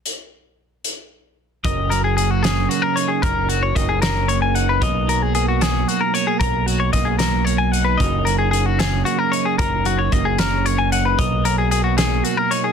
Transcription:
<<
  \new Staff \with { instrumentName = "Clean electric guitar" } { \time 6/8 \key fis \major \tempo 4. = 75 r2. | dis''8 ais'16 gis'16 gis'16 fis'16 gis'8 fis'16 ais'16 cis''16 gis'16 | ais'8 fis'16 cis''16 dis''16 gis'16 ais'8 cis''16 gis''16 fis''16 b'16 | dis''8 ais'16 gis'16 gis'16 fis'16 gis'8 fis'16 ais'16 cis''16 gis'16 |
ais'8 fis'16 cis''16 dis''16 gis'16 ais'8 cis''16 gis''16 fis''16 b'16 | dis''8 ais'16 gis'16 gis'16 fis'16 gis'8 fis'16 ais'16 cis''16 gis'16 | ais'8 fis'16 cis''16 dis''16 gis'16 ais'8 cis''16 gis''16 fis''16 b'16 | dis''8 ais'16 gis'16 gis'16 fis'16 gis'8 fis'16 ais'16 cis''16 gis'16 | }
  \new Staff \with { instrumentName = "Clean electric guitar" } { \time 6/8 \key fis \major << { r2. | ais'4 ais4 ais8 dis'8 | ais'4 ais4 ais8 dis'8 | ais'4 ais4 ais8 cis'16 dis'16 |
ais'4 ais4 ais8 dis'8 | ais'4 ais4 ais8 dis'8 | ais'4 ais4 ais8 dis'8 | ais'4 ais4 ais8 dis'8 | } \\ { r2. | fis,8 fis4 cis4. | fis,8 fis4 cis4. | b,8 fis4 fis4. |
r8 fis4 fis4. | fis,8 fis4 cis4. | fis,8 fis4 cis4. | b,8 fis4 fis4. | } >> }
  \new Staff \with { instrumentName = "Fingered electric bass" } { \clef bass \time 6/8 \key fis \major r2. | fis,,2 r4 | fis,,4 fis,,2 | b,,2 r4 |
b,,4 b,,2 | fis,,2 r4 | fis,,4 fis,,2 | b,,2 r4 | }
  \new DrumStaff \with { instrumentName = "Drums" } \drummode { \time 6/8 hh4. hh4. | <hh bd>8 hh8 hh8 <hh sn>8 hh8 hh8 | <hh bd>8 hh8 <hh bd>8 <hh sn>8 hh8 hh8 | <hh bd>8 hh8 hh8 <hh sn>8 hh8 hh8 |
<hh bd>8 hh8 <hh bd>8 <hh sn>8 hh8 hh8 | <hh bd>8 hh8 hh8 <hh sn>8 hh8 hh8 | <hh bd>8 hh8 <hh bd>8 <hh sn>8 hh8 hh8 | <hh bd>8 hh8 hh8 <hh sn>8 hh8 hh8 | }
>>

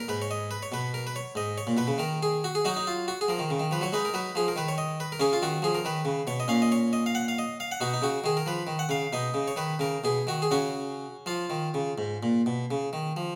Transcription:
<<
  \new Staff \with { instrumentName = "Harpsichord" } { \time 12/8 \key cis \mixolydian \tempo 4. = 92 << { b'16 cis''16 dis''8 b'16 cis''16 b'8 ais'16 b'16 cis''8 dis''8 cis''8 b'8 ais'8 gis'8 fis'16 gis'16 | fis'16 dis'16 eis'8 fis'16 gis'16 ais'4 b'16 cis''16 b'16 ais'16 b'8 gis'16 ais'16 b'16 cis''16 dis''8 b'16 ais'16 | gis'16 eis'16 fis'8 gis'16 ais'16 b'4 cis''16 dis''16 eis''16 dis''16 cis''8 dis''16 eis''16 fis''16 eis''16 dis''8 eis''16 fis''16 | fis'16 dis'16 fis'8 gis'16 ais'16 b'8. fis''16 eis''8 dis''8. cis''16 b'8 ais'8 gis'8 fis'16 gis'16 |
fis'4. eis'1 r8 | } \\ { r1. | dis'2. dis'2. | cis'2. cis'2. | dis'2. dis'2. |
cis'1. | } >> }
  \new Staff \with { instrumentName = "Harpsichord" } { \clef bass \time 12/8 \key cis \mixolydian gis,4. b,4. gis,8. ais,16 b,16 cis16 dis4. | fis4. eis16 dis16 cis16 dis16 eis16 fis16 gis8 fis8 eis8 dis4. | cis8 dis8 eis8 dis8 cis8 b,8 ais,2. | b,8 cis8 dis8 eis8 dis8 cis8 b,8 cis8 dis8 cis8 b,8 dis8 |
cis4. eis8 dis8 cis8 gis,8 ais,8 b,8 cis8 dis8 eis8 | }
>>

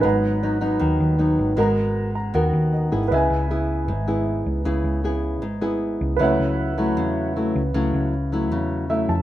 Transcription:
<<
  \new Staff \with { instrumentName = "Grand piano" } { \time 4/4 \key gis \minor \tempo 4 = 156 << { r1 | r4. ais''8 fis''4 dis''4 | \key cis \minor r1 | r1 |
r1 | r2. e''8 a''8 | } \\ { <b' dis'' fis'' ais''>1 | <dis'' fis'' ais''>1 | <b' dis'' e'' gis''>1~ | <b' dis'' e'' gis''>1 |
<b' cis'' e'' fis''>1~ | <b' cis'' e'' fis''>1 | } >> }
  \new Staff \with { instrumentName = "Nylon-string guitar" } { \time 4/4 \key gis \minor << { <fis b dis'>4 <fis b dis'>8 <fis b dis'>4. <fis b dis'>4 | <b fis' ais'>4. r8 <b fis' ais'>4. <b e' gis'>8~ | \key cis \minor <b e' gis'>4 <b e' gis'>4 r8 <b e' gis'>4. | <b e' gis'>4 <b e' gis'>4 r8 <b e' gis'>4. |
<fis a e'>4. <fis a e'>4. <fis a e'>8 r8 | <fis a e'>4 r8 <fis a e'>4. <fis a e'>8 r8 | } \\ { gis,2 dis2 | gis2 dis2 | cis2 gis,2 | cis2 gis,2 |
cis2 cis2 | cis2 cis2 | } >> }
  \new Staff \with { instrumentName = "Picked electric bass" } { \clef bass \time 4/4 \key gis \minor gis,,2 dis,8 dis,4 gis,,8 | gis,,2 dis,8 dis,4 gis,,8 | \key cis \minor cis,8 cis,4. gis,,4. cis,8 | cis,8 cis,4. gis,,4. cis,8 |
cis,8 cis,4. e,4. cis,8 | cis,8 cis,4. e,4. eis,8 | }
>>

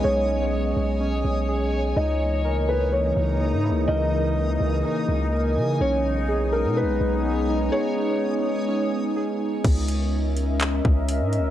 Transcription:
<<
  \new Staff \with { instrumentName = "Synth texture" } { \time 4/4 \key cis \dorian \tempo 4 = 125 << { <cis'' dis'''>1 | <dis' dis'''>1~ | <dis' dis'''>1 | <cis'' dis'''>1~ |
<cis'' dis'''>1 | r1 | } \\ { gis''1 | ais''1 | gis''1 | gis''1~ |
gis''1 | r1 | } >> }
  \new Staff \with { instrumentName = "Felt piano" } { \time 4/4 \key cis \dorian cis''2. r4 | dis''4. b'8 cis''2 | dis''1 | cis''4. ais'8 b'2 |
cis''2. r4 | r1 | }
  \new Staff \with { instrumentName = "Synth keys" } { \time 4/4 \key cis \dorian <cis' dis' gis'>8 cis'4. cis'4 gis'4 | dis'4 ais'2 dis'8 e'8 | ais'8 dis'4. dis'4 ais'4 | cis'4 gis'2 cis'8 dis'8 |
gis'8 cis'4. cis'4 gis'4 | r1 | }
  \new Staff \with { instrumentName = "Ambient pad" } { \time 4/4 \key cis \dorian << { <b dis''>1~ | <b dis''>1~ | <b dis''>1 | b1~ |
b1 | dis''1 | } \\ { gis1 | <cis e ais>1~ | <cis e ais>1 | <gis dis'>1~ |
<gis dis'>1 | <cis' ais' e''>1 | } >> }
  \new Staff \with { instrumentName = "808-style bass" } { \clef bass \time 4/4 \key cis \dorian b,,4. b,,4 b,,4. | cis,2~ cis,8 cis,8. gis,16. cis,16. | cis,4. cis,8 r8 cis,4 cis8 | b,,4.~ b,,16 b,16. b,,16. b,,4. |
r1 | cis,2~ cis,8 cis,8. gis,16. cis,16. | }
  \new DrumStaff \with { instrumentName = "Drums" } \drummode { \time 4/4 r4 r4 r4 r4 | r4 r4 r4 r4 | r4 r4 r4 r4 | r4 r4 r4 r4 |
r4 r4 r4 r4 | <cymc hh bd>8 hh8 r8 hh8 <hc hh>8 bd8 hh8 hh8 | }
>>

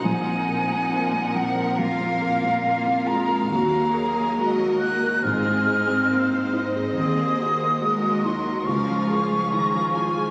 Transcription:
<<
  \new Staff \with { instrumentName = "Flute" } { \time 4/4 \key ees \dorian \tempo 4 = 70 aes''4. ges''8 f''4. bes''8 | bes''4. ges'''8 f'''4. r8 | ees'''4. c'''8 des'''2 | }
  \new Staff \with { instrumentName = "Violin section" } { \time 4/4 \key ees \dorian << { ges''2 f''4 f''4~ | f''4 ees''4 ees''4 f''8 ees''8~ | ees''4 ees''4 f''4 bes''8 aes''8 | } \\ { bes'1 | bes'2 aes'4 c''4 | c''4 bes'4 bes'8 aes'4. | } >> }
  \new Staff \with { instrumentName = "Felt piano" } { \time 4/4 \key ees \dorian bes,,16 c'16 bes'16 c'16 bes16 c'16 f16 bes'16 f,16 c'16 bes'16 c'16 bes16 c'16 f'16 bes'16 | ees,16 bes16 bes'16 bes16 aes16 bes16 ges'16 bes'16 aes,16 c'16 aes'16 c'16 bes16 c'16 ees'16 aes'16 | ees,16 bes16 ges'16 bes16 aes16 bes16 ees'16 ges'16 des,16 f16 aes'16 f16 ees16 f16 f'16 aes'16 | }
  \new Staff \with { instrumentName = "Viola section" } { \time 4/4 \key ees \dorian << { ees'2 f'8 f'4. | ges'8 aes'8 ges'4 f'8 ees'8 ees'4 | aes'4 ges'4 f'4 f'4 | } \\ { f8 f4. bes4 bes8 aes8 | ges4 ges8 bes8 c'2 | c'8 bes8 aes8 ges8 f4 f4 | } >> }
  \new Staff \with { instrumentName = "Cello section" } { \clef bass \time 4/4 \key ees \dorian bes,1 | ees,2 aes,2 | ees,2 des,2 | }
  \new Staff \with { instrumentName = "Double bass section" } { \clef bass \time 4/4 \key ees \dorian bes,,4 r2. | ees,4 r4 aes,,4 r4 | ees,4 r4 des,4 r4 | }
>>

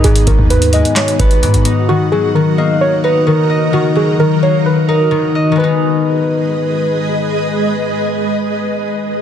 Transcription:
<<
  \new Staff \with { instrumentName = "Synth keys" } { \time 4/4 \key gis \minor \tempo 4 = 130 gis'8 ais'8 b'8 dis''8 cis''8 b'4. | fis'8 gis'8 ais'8 dis''8 cis''8 b'8 ais'4 | fis'8 gis'8 ais'8 cis''8 b'8 ais'4. | b'2. r4 |
r1 | }
  \new Staff \with { instrumentName = "Ambient pad" } { \time 4/4 \key gis \minor <b dis' fis'>1 | <dis dis' ais'>1~ | <dis dis' ais'>1 | <gis gis' b' dis''>1~ |
<gis gis' b' dis''>1 | }
  \new Staff \with { instrumentName = "Harp" } { \clef bass \time 4/4 \key gis \minor <gis, b dis'>8 dis8 gis,8 gis4 b8 gis,8 dis'8 | dis8 fis8 dis8 ais4 dis'8 dis8 dis''8 | dis8 fis8 dis8 ais4 dis'8 dis8 dis''8 | <dis gis b dis'>1~ |
<dis gis b dis'>1 | }
  \new Staff \with { instrumentName = "808-style bass" } { \clef bass \time 4/4 \key gis \minor gis,,8 gis,,16 dis,4 r8. gis,,8 gis,16 gis,,16 r8 | r1 | r1 | r1 |
r1 | }
  \new DrumStaff \with { instrumentName = "Drums" } \drummode { \time 4/4 hh16 hh16 <hh bd>16 bd16 hh16 hh16 hh16 hh16 <hc hh sn>16 hh16 <hh bd>16 hh16 hh16 hh16 hh8 | r4 r4 r4 r4 | r4 r4 r4 r4 | r4 r4 r4 r4 |
r4 r4 r4 r4 | }
>>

